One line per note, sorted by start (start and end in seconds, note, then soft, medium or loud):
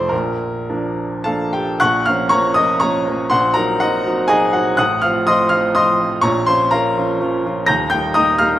0.00 0.14 F1 medium
0.00 0.14 F2 medium
0.00 0.14 F3 soft
0.00 0.14 A3 soft
0.00 0.15 C4 soft
0.00 0.11 C5 medium
0.00 0.15 D5 loud
0.09 1.78 A#1 soft
0.09 1.78 A#2 medium
0.09 1.54 A#4 medium
0.69 1.23 F3 soft
0.69 1.23 A#3 soft
0.69 1.23 D4 medium
1.24 1.78 F3 soft
1.24 1.78 A#3 soft
1.24 1.78 D4 soft
1.24 1.52 A4 medium
1.24 1.52 F5 medium
1.24 1.54 A5 loud
1.53 1.79 G4 medium
1.53 1.81 G5 medium
1.80 2.06 A#1 medium
1.80 2.06 A#2 medium
1.80 2.04 F#5 medium
1.80 2.05 C#6 medium
1.80 2.06 F#6 loud
2.06 2.30 F3 medium
2.06 2.30 A#3 medium
2.06 2.30 C#4 medium
2.06 2.30 F5 medium
2.06 2.31 F6 loud
2.29 2.54 F3 medium
2.29 2.55 A#3 medium
2.29 2.54 C#4 medium
2.29 2.54 C#5 medium
2.29 2.54 A#5 medium
2.29 2.56 C#6 loud
2.54 2.80 F3 medium
2.54 2.80 A#3 medium
2.54 2.80 C#4 medium
2.54 2.80 D#5 medium
2.54 2.81 D#6 loud
2.80 3.05 F3 medium
2.80 3.05 A#3 medium
2.80 3.05 C#4 medium
2.80 3.28 C#5 medium
2.80 3.28 A#5 medium
2.80 3.31 C#6 loud
3.07 3.30 F3 soft
3.07 3.30 A#3 medium
3.07 3.30 C#4 medium
3.30 3.55 A#1 medium
3.30 3.56 A#2 medium
3.30 3.55 C5 medium
3.30 3.54 F#5 medium
3.30 3.55 C6 loud
3.54 3.79 F#3 medium
3.54 3.79 C4 medium
3.54 3.79 D#4 medium
3.54 3.79 A#4 medium
3.54 3.80 A#5 loud
3.80 4.04 F#3 soft
3.80 4.04 C4 medium
3.80 4.05 D#4 medium
3.80 4.27 F#4 medium
3.80 4.27 D#5 medium
3.80 4.30 F#5 loud
4.06 4.28 F#3 soft
4.06 4.28 C4 medium
4.06 4.28 D#4 medium
4.28 4.52 F#3 soft
4.28 4.52 C4 medium
4.28 4.53 D#4 medium
4.28 4.52 G#4 medium
4.28 4.52 D#5 medium
4.28 4.53 G#5 loud
4.53 4.77 F#3 medium
4.53 4.77 C4 medium
4.53 4.77 D#4 medium
4.53 4.77 F#4 medium
4.53 4.77 F#5 medium
4.77 5.02 A1 medium
4.77 5.03 A2 medium
4.77 5.01 F#5 medium
4.77 5.01 D#6 medium
4.77 5.02 F#6 loud
5.02 5.25 F3 medium
5.02 5.26 C4 medium
5.02 5.26 F4 medium
5.02 5.25 F5 medium
5.02 5.27 F6 loud
5.27 5.50 F3 medium
5.27 5.50 C4 medium
5.27 5.50 F4 medium
5.27 5.50 D#5 medium
5.27 5.50 C6 medium
5.27 5.51 D#6 loud
5.49 5.74 F3 medium
5.49 5.74 C4 soft
5.49 5.74 F4 medium
5.49 5.74 F5 medium
5.49 5.75 F6 loud
5.75 5.99 F3 medium
5.75 5.99 C4 soft
5.75 5.99 F4 medium
5.75 6.21 D#5 medium
5.75 6.21 C6 medium
5.75 6.24 D#6 loud
6.01 6.22 F3 medium
6.01 6.23 C4 medium
6.01 6.23 F4 medium
6.21 6.48 A#1 medium
6.21 6.48 A#2 medium
6.21 6.46 C#5 medium
6.21 6.46 A#5 medium
6.21 6.48 C#6 loud
6.46 6.71 F3 medium
6.46 6.71 C#4 medium
6.46 6.71 F4 medium
6.46 6.71 C5 medium
6.46 6.72 C6 loud
6.71 6.95 F3 medium
6.71 6.95 C#4 medium
6.71 6.96 F4 medium
6.71 7.17 A#4 medium
6.71 7.17 F5 medium
6.71 7.20 A#5 loud
6.98 7.19 F3 medium
6.98 7.19 C#4 medium
6.98 7.19 F4 medium
7.20 7.42 F3 medium
7.20 7.42 C#4 medium
7.20 7.43 F4 medium
7.46 7.67 F3 medium
7.46 7.67 C#4 medium
7.46 7.67 F4 medium
7.67 7.92 D#1 medium
7.67 7.92 D#2 medium
7.67 7.90 A#5 medium
7.67 7.88 G6 medium
7.67 7.91 A#6 loud
7.90 8.14 G3 medium
7.90 8.14 A#3 medium
7.90 8.14 D#4 medium
7.90 8.14 G5 medium
7.90 8.15 G6 loud
8.14 8.37 G3 medium
8.14 8.38 A#3 medium
8.14 8.38 D#4 medium
8.14 8.38 D#5 medium
8.14 8.38 A#5 medium
8.14 8.39 D#6 loud
8.38 8.59 G3 medium
8.38 8.59 A#3 medium
8.38 8.59 D#4 medium
8.38 8.59 F5 medium
8.38 8.59 F6 loud